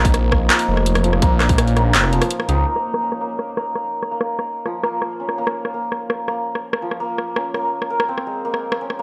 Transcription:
Already playing: A#1 F3 G#3 A#3 C#4 F4 C5 D#5
0.05 kick, open hi-hat
0.14 cross-stick, closed hi-hat
0.32 kick, cross-stick
0.50 A#3, cross-stick, clap, closed hi-hat
0.59 open hi-hat
0.68 F1
0.77 cross-stick
0.86 closed hi-hat
0.95 cross-stick, open hi-hat
1.04 F3, closed hi-hat
1.13 cross-stick
1.22 A#1 A#3, kick, closed hi-hat
1.40 cross-stick, clap, closed hi-hat
1.49 kick, open hi-hat
1.58 C#4, cross-stick, closed hi-hat
1.67 open hi-hat
1.76 A#3, cross-stick, closed hi-hat
1.94 F1, clap, closed hi-hat
2.04 cross-stick
2.12 F3, closed hi-hat
2.22 cross-stick, open hi-hat
2.31 closed hi-hat
2.40 cross-stick
2.48 C#2 D#4, closed hi-hat
2.66 A#3
2.76 C#5, cross-stick
2.94 cross-stick
3.03 C#4
3.12 cross-stick
3.21 A#3
3.39 cross-stick
3.57 A#3, cross-stick
3.75 cross-stick
4.03 cross-stick
4.11 A#3
4.21 cross-stick
4.39 cross-stick
4.65 F3, cross-stick
4.83 A#3, cross-stick
5.02 cross-stick
5.20 C#4
5.29 cross-stick
5.38 A#3
5.47 cross-stick
5.65 cross-stick
5.74 A#3
5.92 cross-stick
6.10 cross-stick
6.28 A#3, cross-stick
6.55 cross-stick
6.73 cross-stick
6.82 F3
6.91 cross-stick
7.00 A#3
7.18 cross-stick
7.36 C#4, cross-stick
7.54 A#3, cross-stick
7.82 cross-stick
7.90 A#4
8.00 cross-stick
8.09 C4
8.18 cross-stick
8.27 G#3
8.45 A#3
8.54 cross-stick
8.72 cross-stick
8.81 C#4
8.90 cross-stick
8.99 A#3

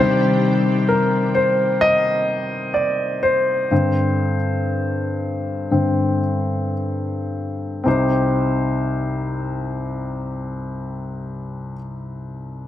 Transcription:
Already playing: C5
0.00 C3 D#3 G3
0.88 A#4
1.35 C5
1.81 D#5
2.74 D5
3.23 C5
3.71 G2 D3 C4
5.71 G2 D3 C4
7.84 C2 C4 D#4 G4
7.88 C5

